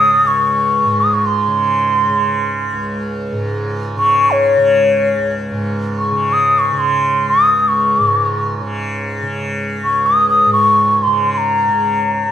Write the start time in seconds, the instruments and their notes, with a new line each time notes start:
Already playing: tanpura C#2 G#2 C#3, bansuri D#6
0.23 tanpura C#2
0.27 bansuri C#6
0.85 tanpura G#2
1.01 bansuri D#6
1.14 bansuri C#6
1.26 bansuri C6
1.48 tanpura C#3
2.09 tanpura C#3
2.73 tanpura C#2
3.32 tanpura G#2
3.96 tanpura C#3, bansuri C#6
4.31 bansuri C#5
4.57 tanpura C#3
5.19 tanpura C#2
5.52 tanpura G#2
5.98 bansuri C#6
6.11 tanpura C#3
6.33 bansuri D#6
6.59 bansuri C#6
6.73 tanpura C#3
6.79 bansuri C6
7.29 bansuri D#6
7.36 tanpura C#2
7.68 bansuri C#6
7.99 tanpura G#2
8.61 tanpura C#3
9.22 tanpura C#3
9.84 tanpura C#2, bansuri C#6
10.06 bansuri D#6
10.30 bansuri D#6
10.46 tanpura G#2
10.53 bansuri C#6
11.03 tanpura C#3, bansuri C6
11.34 bansuri C6
11.38 bansuri A#5
11.68 tanpura C#3